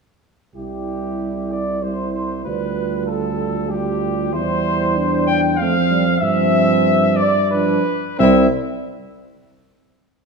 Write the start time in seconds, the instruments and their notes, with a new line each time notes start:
0.55 tuba C2, euphonium G3, french horn E4, cornet G4, flugelhorn G4
1.52 cornet D5, flugelhorn D5
1.82 euphonium G3, french horn E4, cornet C5, flugelhorn C5
2.13 cornet C5, flugelhorn C5
2.45 tuba D2, euphonium G3, french horn F4, cornet B4, flugelhorn B4
3.06 cornet A4, flugelhorn A4
3.69 euphonium G3, french horn F4, flugelhorn G4, cornet G4
4.33 tuba E2, euphonium G3, french horn E4, flugelhorn C5, cornet C5
4.96 french horn D4
5.27 cornet G5, flugelhorn G5
5.57 tuba F2, euphonium A3, french horn C4, cornet F5, flugelhorn F5
5.91 euphonium G3
6.20 tuba G2, euphonium F3, french horn C4, cornet E5, flugelhorn E5
7.16 cornet D5, flugelhorn D5
7.51 euphonium F3, french horn D4, cornet B4, flugelhorn B4
8.19 tuba C2, euphonium G3, french horn C4, flugelhorn E4, cornet E5